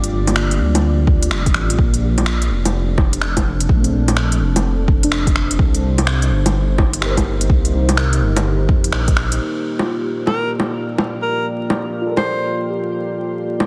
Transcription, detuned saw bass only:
Already playing: G1
0.12 G1
0.60 D2
1.31 F1
1.54 A1
1.79 A#1
2.50 F1
3.69 A#1
3.93 A#1
4.40 F1
5.27 F1
5.50 F1
5.59 C2
6.31 G1
7.50 C2
7.74 C2
8.22 G1
8.69 F2
8.93 A#1

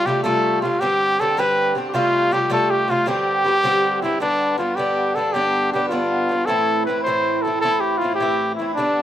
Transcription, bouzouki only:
0.06 C3 G3 A3 F4
0.24 C3 G3 A3 F4
0.62 C3 G3 A3 F4
0.81 G2 D3 C4 G4
1.19 G2 D3 C4 G4
1.37 G2 D3 C4 G4
1.75 G2 D3 C4 G4
1.94 C3 G3 A3 F4
2.31 C3 G3 A3 F4
2.50 C3 G3 A3 F4
2.88 C3 G3 A3 F4
3.06 G2 D3 C4 G4
3.44 G2 D3 C4 G4
3.63 G2 D3 C4 G4
4.02 G2 D3 C4 G4
4.20 G2 D3 B3 D4
4.58 G2 D3 B3 D4
4.77 G2 D3 B3 D4
5.15 G2 D3 B3 D4
5.34 G2 D3 B3 D4
5.73 G2 D3 B3 D4
5.91 G2 D3 B3 D4
6.29 G2 D3 B3 D4
6.47 A2 E3 C4 E4
6.87 A2 E3 C4 E4
7.06 A2 E3 C4 E4
7.45 A2 E3 C4 E4
7.62 A2 E3 C4 E4
8.01 A2 E3 C4 E4
8.20 A2 E3 C4 E4
8.59 A2 E3 C4 E4
8.77 G2 D3 B3 D4

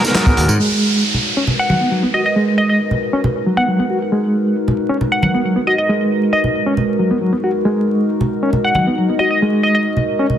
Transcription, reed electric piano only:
0.04 B3
0.15 F#3
0.27 B3
0.37 F#4
0.59 G#3
1.37 C#4
1.70 F#3
1.81 B3
1.91 F#3
2.03 B3
2.14 F#4
2.36 G#3
3.13 C#4
3.46 F#3
3.57 B3
3.68 F#3
3.79 B3
3.90 F#4
4.12 G#3
4.89 C#4
5.23 F#3
5.34 B3
5.45 F#3
5.56 B3
5.67 F#4
5.89 G#3
6.67 C#4
6.99 F#3
7.11 B3
7.21 F#3
7.33 B3
7.44 F#4
7.65 G#3
8.43 C#4
8.76 F#3
8.87 B3
8.98 F#3
9.09 B3
9.20 F#4
9.42 G#3
10.20 C#4

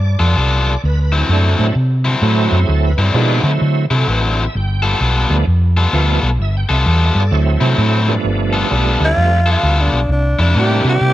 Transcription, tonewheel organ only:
Already playing: D5
0.85 B4
1.01 B4
1.17 E4
1.32 A3 D4
1.58 F#3 A3 C4 E4
2.22 F#3 A3 C4 E4
2.66 G#4
2.71 A4
2.87 B4
3.02 D5
3.14 F3 G#3 B3 D#4 D5
3.45 F#3 A3 C4 E4
3.90 G#4
3.95 A4
4.09 B4
4.25 D5
4.41 E5
4.57 G5
4.82 F#5
4.87 G5
5.30 F3 A3 B3 D4
5.93 F3 A3 B3 F4
6.42 E5
6.57 G5
6.68 D#5
6.73 E5
6.88 G5
7.04 E5
7.19 A4 D5
7.31 F#3 A3 C4 E4
8.07 G2 F3 A3 B3 D4
8.70 G3 A3 B3 D4 F4
10.56 G3 A#3 C4 D4 E4

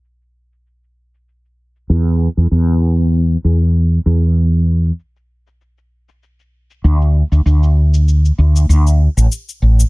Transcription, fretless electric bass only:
1.90 E2
2.37 E2
2.51 E2
3.44 E2
4.06 E2
6.84 D2
7.32 D2
7.46 D2
8.38 D2
8.69 D2
9.17 A1
9.62 A1

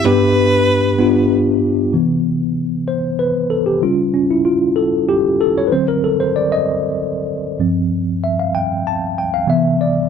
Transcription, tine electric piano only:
0.04 G2 B3 D4 G4
0.99 B3 D4 F4
1.93 C3 E3 B3
2.88 C5
3.19 B4
3.50 A4
3.66 G4
3.82 C#3 G3 C#4 F4
4.14 C#4
4.31 E4
4.45 F4
4.76 A4
5.09 G4
5.41 A4
5.58 C#5
5.67 D3 F#3 B4
5.72 C4 C5
5.88 A#4
6.04 A4
6.20 C5
6.36 D5
6.52 D#5
7.59 G2 F3 C4
8.24 E5
8.39 F5
8.55 G5
8.87 A5
9.18 G5
9.34 F5
9.47 C3 E3 B3 E5
9.81 D5

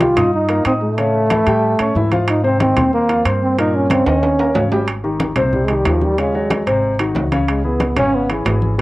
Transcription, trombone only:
Already playing: F4
0.34 D#4
0.66 C4
0.82 A3
2.29 D#4
2.45 C4
2.61 C4
2.94 A#3
3.43 C4
3.59 D#4
3.75 C#4
3.92 C4
4.08 C#4
5.54 G3
5.65 G#3
5.76 G3
5.87 F3
6.03 G3
6.20 G#3
7.50 G#3
7.66 B3
7.99 C#4
8.15 B3

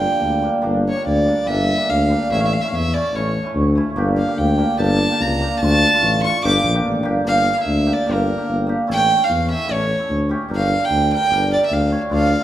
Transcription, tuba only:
0.21 D2
0.63 G1
1.06 D2
1.47 G1
1.89 D2
2.31 A1
2.72 E2
3.13 A1
3.54 D2
3.95 G1
4.38 D2
4.78 G1
5.20 C#2
5.62 D2
6.01 A1
6.44 G1
6.63 A#1
6.84 A1
7.04 G1
7.25 G1
7.66 D2
8.08 G1
8.48 G1
8.89 A1
9.29 E2
9.69 A1
10.09 D2
10.50 G1
10.90 D2
11.30 G1
11.71 D2
12.10 D2

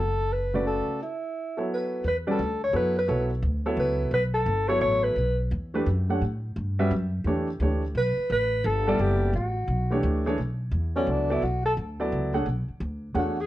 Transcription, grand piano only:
0.54 C#3 A3 F#4 B4 D5
1.57 F#3 B3 E4 A4 C#5
2.27 G3 C#4 F#4 B4 D5
2.73 F#3 B3 E4 A4 C#5
3.08 F#3 B3 E4 A4 C#5
3.66 F#3 B3 E4 A4 C#5
4.69 F#3 B3 E4 A4 C#5
5.74 E3 A3 D4 G4 B4
6.09 A3 D4 G4 C#5 F#5
6.79 G3 C#4 F#4 B4 E5
7.26 E3 A3 D4 G4 C#5
7.61 E3 A3 D4 G4 C#5
8.87 G3 B3 E4 A4 D5
9.90 E3 A3 D4 G4 C#5
10.26 E3 A3 D4 G#4 C#5
10.96 F#3 B3 E4 A4 D5
11.30 F#3 B3 E4 A4 D5
12.00 F#3 B3 E4 A4 D5
12.34 A3 D4 G#4 C#5 F#5
13.14 A3 D4 G#4 C#5 F#5

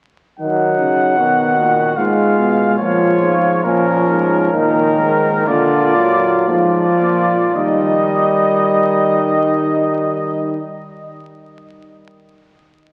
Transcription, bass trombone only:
0.40 D#3
0.79 C#3
1.18 B2
1.58 A#2
1.97 G#2
2.38 B2
2.79 A#2
3.21 G#2
3.64 A#2
4.08 G#2
4.53 A#2
4.99 G#2
5.47 A#2
6.48 G#2
7.01 A#2
7.56 D#3

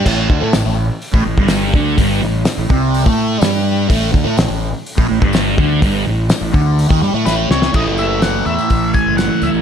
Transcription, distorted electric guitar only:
0.05 A2
0.30 D3
0.41 A3
0.54 A2
0.65 A2
1.13 A2
1.26 A2
1.38 G2
1.74 D3
1.97 G2
2.22 A2
2.58 A2
2.70 C3
3.06 A3
3.40 G3
3.88 A2
4.12 D3
4.24 A3
4.37 A2
4.48 A2
4.97 A2
5.09 A2
5.21 G2
5.57 D3
5.81 G2
6.06 A2
6.41 A2
6.53 D3
6.89 D#3
7.02 G3
7.15 A3
7.26 A2
7.50 C3
7.72 A2 E3 A3

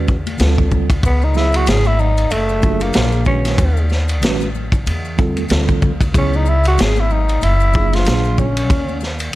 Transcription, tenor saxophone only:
1.06 B3
1.24 D#4
1.37 E4
1.56 F#4
1.69 G#4
1.87 E4
2.00 D#4
2.31 A3
2.82 A#3
3.27 C#4
6.18 C#4
6.37 D#4
6.49 E4
6.67 F#4
6.82 G#4
7.00 E4
7.12 D#4
7.44 E4
7.94 F4
8.39 C#4

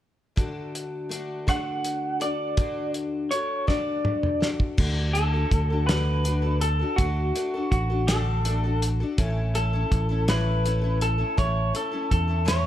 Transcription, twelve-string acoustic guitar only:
0.36 D3 A3 D4 F#4 A4
1.09 A3 D4 F#4 A4
1.47 D3 A3 D4 F#4 A4
2.20 D4 F#4 A4
2.57 D3 A3 D4 F#4 A4
3.31 A3 D4 F#4 A4
3.67 D3 A3 D4 F#4 A4
4.40 D4 F#4 A4
4.77 D3 A3 D4 F#4 A4
5.15 A3 D4 F#4 A4
5.34 D4 F#4 A4
5.70 D4 F#4 A4
5.88 D3 A3 D4 F#4 A4
6.24 A3 D4 F#4 A4
6.42 D4 F#4 A4
6.79 D4 F#4 A4
6.99 D3 A3 D4 F#4 A4
7.35 A3 D4 F#4 A4
7.54 D4 F#4 A4
7.90 D4 F#4 A4
8.08 D3 A3 D4 F#4 A4
8.45 A3 D4 F#4 A4
8.64 D4 F#4 A4
9.00 D4 F#4 A4
9.18 A2 E3 A3 C#4 E4 A4
9.54 A3 C#4 E4 A4
9.73 A3 C#4 E4 A4
10.09 A3 C#4 E4 A4
10.28 A2 E3 A3 C#4 E4 A4
10.64 A3 C#4 E4 A4
10.82 A3 C#4 E4 A4
11.18 A3 C#4 E4 A4
11.37 A2 E3 A3 C#4 E4 A4
11.74 A3 C#4 E4 A4
11.92 A3 C#4 E4 A4
12.28 A3 C#4 E4 A4
12.45 A2 E3 A3 C#4 E4 A4

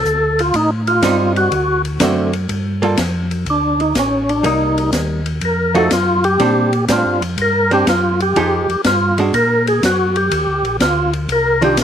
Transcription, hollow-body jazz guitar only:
1.02 G3 C4 D#4
2.00 D3 A3 C4 F#4
2.82 G3 A#3 F4 A4
4.43 G3 A#3 D#4
5.75 F3 A3 D#4 F#4
6.40 G3 C4 D4
6.89 G3 C4 D4
7.71 G3 C4 D4
8.36 F3 G#3 D#4 G4
9.19 G#3 D4 F#4
11.62 D#3 G3 D4 F4

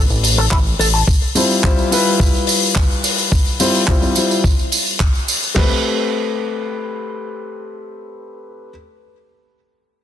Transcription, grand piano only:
1.35 G3 E4 F4 C5
1.63 G3 E4 F4 C5
1.91 G3 E4 F4 B4
3.59 G3 E4 F4 C5
3.88 G3 F4 C5
4.16 G3 E4 F4 C5
5.55 A3 C4 G4 B4

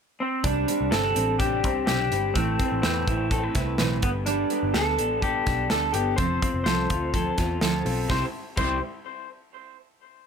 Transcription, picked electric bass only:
0.44 C2
0.81 C2
0.93 G1
1.16 A1
1.64 C2
1.88 B1
2.12 G1
2.35 A1
2.72 A1
2.84 E2
3.08 A1
3.55 C2
3.79 B1
4.03 G1
4.63 G1
4.75 D2
4.99 A1
5.47 B1
5.71 D2
5.94 G1
6.18 F1
6.54 F1
6.66 C2
6.90 D2
7.38 E2
7.61 D2
7.85 B1
8.10 C2
8.57 C2

